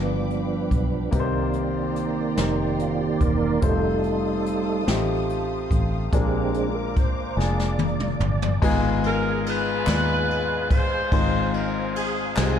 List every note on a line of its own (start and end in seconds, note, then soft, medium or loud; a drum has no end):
0.00 0.67 G1 medium
0.00 1.09 G2 medium
0.00 1.10 F3 soft
0.00 0.83 G3 medium
0.00 0.83 B3 soft
0.00 1.10 B3 soft
0.00 0.83 D4 soft
0.00 1.11 D4 medium
0.00 0.83 F4 medium
0.00 0.83 B4 medium
0.00 1.12 F5 medium
0.00 1.11 G5 medium
0.00 1.12 B5 medium
0.00 1.11 D6 medium
0.30 closed hi-hat soft
0.71 1.09 B1 medium
0.71 kick medium
0.71 closed hi-hat medium
1.11 2.34 C2 medium
1.11 2.33 C3 medium
1.11 2.07 A#3 medium
1.11 2.07 C4 medium
1.11 2.07 D#4 medium
1.11 2.08 G4 medium
1.11 1.19 B4 medium
1.11 3.60 G5 medium
1.11 3.60 A#5 medium
1.11 6.08 C6 medium
1.11 kick medium
1.11 closed hi-hat loud
1.16 3.60 D#3 soft
1.16 3.60 A#3 soft
1.16 3.61 D5 medium
1.20 2.11 C5 medium
1.53 closed hi-hat soft
1.96 closed hi-hat medium
2.37 3.17 F1 medium
2.37 3.32 A#3 medium
2.37 3.32 C4 medium
2.37 3.33 D#4 medium
2.37 2.81 D#4 medium
2.37 3.33 G4 medium
2.37 3.33 C5 medium
2.37 snare medium
2.37 closed hi-hat medium
2.79 3.02 F4 medium
2.79 closed hi-hat soft
3.01 3.22 G4 medium
3.21 3.59 E1 medium
3.21 3.64 A#4 loud
3.21 kick medium
3.21 closed hi-hat medium
3.61 4.84 F1 medium
3.61 4.84 G3 soft
3.61 4.57 A3 medium
3.61 4.84 A3 soft
3.61 4.57 C4 medium
3.61 4.58 D#4 medium
3.61 4.58 F4 medium
3.61 4.84 A4 medium
3.61 4.58 C5 medium
3.61 8.59 F5 medium
3.61 6.11 A5 medium
3.61 6.11 D#6 medium
3.61 kick medium
3.61 closed hi-hat loud
3.65 4.85 D#4 medium
4.03 closed hi-hat soft
4.46 closed hi-hat medium
4.86 5.67 A1 medium
4.86 5.82 A3 medium
4.86 5.82 C4 medium
4.86 5.83 D#4 medium
4.86 5.83 F4 medium
4.86 5.83 G4 medium
4.86 snare loud
4.86 closed hi-hat medium
5.30 closed hi-hat soft
5.71 6.09 A1 medium
5.71 kick medium
5.71 closed hi-hat medium
6.13 7.34 A#1 medium
6.13 7.34 A#2 medium
6.13 7.08 G#3 medium
6.13 6.69 G#3 medium
6.13 7.08 A#3 medium
6.13 6.69 C4 medium
6.13 7.08 D4 medium
6.13 6.70 D4 medium
6.13 7.08 F4 medium
6.13 6.57 G4 medium
6.13 7.09 A#4 medium
6.13 8.61 A#5 medium
6.13 8.60 D6 medium
6.13 kick loud
6.13 closed hi-hat medium
6.54 6.76 G#4 medium
6.54 closed hi-hat soft
6.75 6.96 A#4 medium
6.96 7.39 C5 medium
6.96 kick medium
6.96 closed hi-hat medium
7.37 8.17 F1 medium
7.37 8.32 G#3 medium
7.37 8.32 A#3 medium
7.37 8.33 D4 medium
7.37 8.33 F4 medium
7.37 8.33 G#4 medium
7.37 8.59 D5 medium
7.37 snare medium
7.59 snare soft
7.79 high tom medium
8.00 mid tom medium
8.20 8.59 G1 medium
8.20 mid tom medium
8.42 floor tom medium
8.62 9.83 G#1 loud
8.62 9.84 G#2 medium
8.62 9.57 G#3 loud
8.62 9.58 B3 loud
8.62 9.58 D#4 loud
8.62 9.58 F4 medium
8.62 11.10 G#4 medium
8.62 9.58 G#4 loud
8.62 12.59 F5 medium
8.62 12.59 G#5 medium
8.62 kick loud
8.62 crash medium
9.03 9.44 A#4 loud
9.03 ride soft
9.46 10.68 D#4 medium
9.46 10.68 F4 medium
9.46 10.72 B4 loud
9.46 ride medium
9.87 11.08 D#2 medium
9.87 10.82 G#3 medium
9.87 10.82 B3 medium
9.87 10.82 D#4 medium
9.87 10.83 F4 medium
9.87 10.83 D5 medium
9.87 snare loud
9.87 clap medium
9.87 ride medium
10.30 ride soft
10.70 11.92 D#4 medium
10.70 11.92 F4 medium
10.70 11.50 C5 loud
10.70 kick medium
10.70 ride medium
11.12 12.33 G#1 medium
11.12 12.33 G#2 medium
11.12 12.07 G#3 medium
11.12 12.07 C4 medium
11.12 12.07 D#4 medium
11.12 12.08 F4 medium
11.12 12.08 C5 loud
11.12 kick loud
11.12 ride medium
11.54 11.96 A#4 loud
11.54 ride soft
11.96 12.36 G#4 medium
11.96 ride medium
12.36 12.59 C2 medium
12.36 12.59 G#3 medium
12.36 12.59 C4 medium
12.36 12.59 D#4 medium
12.36 12.59 F4 medium
12.36 12.45 G4 medium
12.36 12.59 G#4 medium
12.36 snare loud
12.36 clap loud
12.36 ride medium
12.46 12.59 G#4 medium